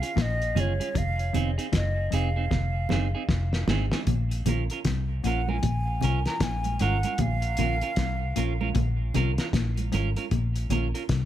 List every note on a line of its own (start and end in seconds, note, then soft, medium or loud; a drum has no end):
0.00 0.11 C#4 soft
0.00 0.10 F4 medium
0.00 0.10 G#4 medium
0.00 0.23 F5 loud
0.00 closed hi-hat soft
0.16 0.54 A#1 medium
0.16 0.40 A#2 medium
0.16 kick loud
0.16 snare loud
0.16 closed hi-hat medium
0.22 0.61 D#5 loud
0.42 closed hi-hat soft
0.55 0.78 F#1 medium
0.55 0.70 F#2 medium
0.55 0.72 C#4 medium
0.55 0.72 F4 medium
0.55 0.73 G#4 loud
0.55 closed hi-hat medium
0.55 high conga medium
0.55 low conga medium
0.60 0.99 C#5 medium
0.80 0.89 C#4 medium
0.80 0.88 F4 medium
0.80 0.88 G#4 medium
0.80 closed hi-hat medium
0.80 high conga medium
0.95 1.32 F1 medium
0.95 1.18 F2 medium
0.95 1.50 F5 loud
0.95 kick loud
0.95 closed hi-hat medium
0.95 low conga medium
1.19 closed hi-hat soft
1.33 1.57 F1 loud
1.33 1.48 F2 medium
1.33 1.50 C4 medium
1.33 1.50 D#4 medium
1.33 1.51 G#4 medium
1.33 closed hi-hat medium
1.33 low conga medium
1.58 1.67 C4 medium
1.58 1.66 D#4 medium
1.58 1.66 G#4 medium
1.58 closed hi-hat soft
1.72 2.10 F#1 medium
1.72 1.96 F#2 medium
1.72 2.16 D#5 medium
1.72 kick loud
1.72 snare loud
1.72 closed hi-hat medium
1.72 high conga soft
2.11 2.49 F1 medium
2.11 2.35 F2 medium
2.11 2.28 C4 medium
2.11 2.29 D#4 medium
2.11 2.29 G#4 loud
2.11 3.70 F5 medium
2.11 closed hi-hat medium
2.36 2.45 C4 medium
2.36 2.45 D#4 medium
2.36 2.44 G#4 medium
2.51 2.88 F1 loud
2.51 2.74 F2 medium
2.51 kick loud
2.51 snare medium
2.51 low conga medium
2.89 3.13 F#1 medium
2.89 3.04 F#2 medium
2.89 3.06 C4 medium
2.89 3.07 D#4 medium
2.89 3.07 G#4 medium
2.89 snare medium
2.89 low conga medium
3.15 3.23 C4 medium
3.15 3.23 D#4 medium
3.15 3.22 G#4 medium
3.29 3.66 F1 medium
3.29 3.52 F2 medium
3.29 kick loud
3.29 snare medium
3.53 snare medium
3.68 3.90 G#1 medium
3.68 3.83 G#2 medium
3.68 3.84 C4 medium
3.68 3.85 D#4 medium
3.68 3.85 G#4 medium
3.68 snare loud
3.68 high conga medium
3.68 low conga medium
3.91 4.01 C4 medium
3.91 4.01 D#4 medium
3.91 4.00 G#4 medium
3.91 snare medium
3.91 high conga medium
4.07 4.44 A#1 medium
4.07 4.31 A#2 medium
4.07 kick medium
4.07 closed hi-hat medium
4.07 low conga medium
4.31 closed hi-hat medium
4.46 4.68 A#1 medium
4.46 4.60 A#2 medium
4.46 4.63 C#4 medium
4.46 4.63 F4 medium
4.46 4.63 A#4 medium
4.46 closed hi-hat medium
4.46 low conga medium
4.70 4.80 C#4 medium
4.70 4.79 F4 soft
4.70 4.79 A#4 medium
4.70 closed hi-hat soft
4.85 5.22 C2 medium
4.85 5.08 C3 medium
4.85 kick loud
4.85 snare medium
4.85 closed hi-hat medium
5.24 5.61 A#1 medium
5.24 5.47 A#2 medium
5.24 5.41 C#4 medium
5.24 5.41 F4 medium
5.24 5.41 A#4 medium
5.24 5.51 F#5 medium
5.24 closed hi-hat medium
5.48 5.57 C#4 medium
5.48 5.57 F4 medium
5.48 5.56 A#4 medium
5.48 6.26 G#5 medium
5.48 high conga medium
5.63 6.00 A#1 medium
5.63 5.86 A#2 medium
5.63 kick loud
5.63 closed hi-hat medium
5.63 low conga medium
6.01 6.25 C2 medium
6.01 6.16 C3 medium
6.01 6.18 C#4 medium
6.01 6.19 F4 medium
6.01 6.19 A#4 loud
6.01 closed hi-hat medium
6.01 low conga medium
6.26 6.36 C#4 soft
6.26 6.35 F4 medium
6.26 6.35 A#4 medium
6.26 6.44 A#5 medium
6.26 snare medium
6.26 closed hi-hat soft
6.40 6.78 A#1 medium
6.40 6.64 A#2 medium
6.40 6.83 G#5 loud
6.40 kick loud
6.40 snare loud
6.40 closed hi-hat medium
6.64 closed hi-hat soft
6.64 high conga medium
6.79 7.03 G#1 loud
6.79 6.95 G#2 medium
6.79 6.96 C#4 medium
6.79 6.97 F4 medium
6.79 6.97 A#4 loud
6.79 7.22 F#5 medium
6.79 closed hi-hat medium
6.79 high conga medium
7.03 7.13 C#4 medium
7.03 7.13 F4 medium
7.03 7.12 A#4 medium
7.03 closed hi-hat medium
7.03 high conga medium
7.18 7.56 A#1 medium
7.18 7.43 A#2 medium
7.18 8.76 F5 loud
7.18 kick loud
7.18 closed hi-hat medium
7.18 low conga medium
7.42 closed hi-hat soft
7.57 7.81 A#1 medium
7.57 7.73 A#2 medium
7.57 7.74 C#4 medium
7.57 7.75 F4 medium
7.57 7.75 A#4 medium
7.57 closed hi-hat medium
7.57 low conga medium
7.81 7.91 C#4 medium
7.81 7.91 F4 medium
7.81 7.90 A#4 medium
7.81 closed hi-hat soft
7.96 8.34 C2 medium
7.96 8.21 C3 medium
7.96 kick loud
7.96 snare loud
7.96 closed hi-hat medium
8.36 8.73 A#1 medium
8.36 8.60 A#2 medium
8.36 8.52 C#4 medium
8.36 8.53 F4 medium
8.36 8.53 A#4 medium
8.36 closed hi-hat medium
8.61 8.69 C#4 medium
8.61 8.69 F4 medium
8.61 8.68 A#4 medium
8.61 high conga medium
8.75 9.12 A#1 loud
8.75 8.98 A#2 medium
8.75 kick loud
8.75 closed hi-hat medium
8.75 low conga medium
9.14 9.37 C2 medium
9.14 9.29 C3 medium
9.14 9.31 C#4 medium
9.14 9.31 F4 medium
9.14 9.31 A#4 loud
9.14 closed hi-hat medium
9.14 low conga medium
9.38 9.47 C#4 soft
9.38 9.47 F4 medium
9.38 9.47 A#4 medium
9.38 snare medium
9.38 closed hi-hat soft
9.53 9.90 A#1 medium
9.53 9.77 A#2 medium
9.53 kick loud
9.53 snare loud
9.53 closed hi-hat medium
9.77 closed hi-hat soft
9.77 high conga medium
9.92 10.15 G#1 loud
9.92 10.06 G#2 medium
9.92 10.09 C#4 medium
9.92 10.09 F4 medium
9.92 10.09 A#4 medium
9.92 closed hi-hat medium
9.92 high conga medium
10.16 10.25 C#4 medium
10.16 10.25 F4 medium
10.16 10.24 A#4 medium
10.16 closed hi-hat medium
10.16 high conga soft
10.31 10.68 A#1 loud
10.31 10.55 A#2 medium
10.31 kick loud
10.31 closed hi-hat medium
10.31 low conga medium
10.56 closed hi-hat soft
10.70 10.92 A#1 medium
10.70 10.85 A#2 medium
10.70 10.86 C#4 medium
10.70 10.87 F4 medium
10.70 10.87 A#4 medium
10.70 closed hi-hat medium
10.70 low conga medium
10.95 11.03 C#4 medium
10.95 11.03 F4 medium
10.95 11.02 A#4 medium
10.95 closed hi-hat medium
11.09 11.25 C2 medium
11.09 11.25 C3 medium
11.09 kick loud
11.09 snare loud
11.09 closed hi-hat medium